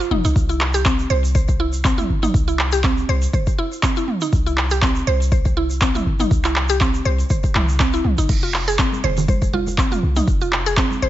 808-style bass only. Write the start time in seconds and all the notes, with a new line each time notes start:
0.11 F1
0.25 C2
0.36 C2
1.10 C2
2.10 G1
2.34 C2
3.09 C2
3.33 G1
4.33 C2
5.07 C2
6.06 G1
6.31 C2
7.05 C2
7.30 G1
7.55 C2
8.05 C2
8.18 G1
8.29 F1
9.04 F1
10.03 C2
10.28 F1
11.02 F1